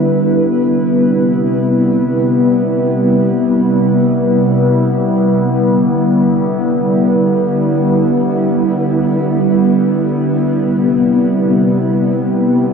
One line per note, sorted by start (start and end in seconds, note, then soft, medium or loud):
0.00 0.53 D3 medium
0.00 12.73 G3 medium
0.00 12.73 B3 medium
0.00 12.73 E4 medium
0.00 12.73 B4 medium
0.54 5.53 C3 medium
5.51 10.51 D3 medium
10.54 12.73 C3 medium